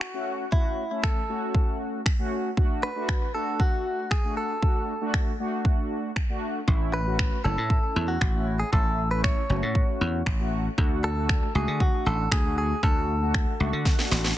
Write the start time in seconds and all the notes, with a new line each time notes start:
Already playing: F#4
0.01 finger snap
0.14 A3 C#4 F#4
0.52 A3 C#4 E4 F#4, kick
0.91 A3 C#4 E4
1.03 A4, finger snap, kick
1.29 A3 C#4 F#4
1.55 kick
2.06 finger snap, kick
2.19 A3 C#4 F#4
2.57 A3 D4 F#4, kick
2.83 B4
2.96 A3 D4 F#4
3.09 finger snap, kick
3.34 A3 D4 F#4 A4
3.60 F#4, kick
4.11 G#4, finger snap, kick
4.24 A3 D4 F#4
4.37 A4
4.62 A3 D4 F#4, kick
5.01 A3 D4 F#4
5.14 finger snap, kick
5.39 A3 D4 F#4
5.65 kick
6.16 finger snap, kick
6.29 A3 D4 F#4
6.68 A1 A3 C#4 E4, kick
6.94 B4
7.06 A3 C#4 F#4
7.19 finger snap, kick
7.44 F#1 A3 C#4 E4 A4
7.58 A2
7.70 kick
7.96 E2
8.08 F#4
8.21 A1, finger snap, kick
8.34 A3 C#4 E4
8.60 G#4
8.73 A1 A3 C#4 E4 A4, kick
9.11 A3 C#4 E4 B4
9.24 C#5, finger snap, kick
9.50 F#1 A3 C#4 F#4
9.62 A2
9.75 kick
10.01 E2
10.26 A1, finger snap, kick
10.39 A3 C#4 F#4
10.78 D2 A3 D4 F#4, kick
11.04 A4
11.16 A3 D4 F#4
11.29 finger snap, kick
11.55 C#2 A3 D4 F#4 G#4
11.68 D3
11.80 F#4, kick
12.06 A1 A4
12.31 D2 G#4, finger snap, kick
12.44 A3 D4 F#4
12.58 G#4
12.83 D2 A3 D4 F#4 A4, kick
13.21 A3 D4 F#4
13.34 finger snap, kick
13.60 C#2 A3 D4 F#4
13.73 D3
13.85 kick, snare
13.99 snare
14.11 A1, snare
14.24 snare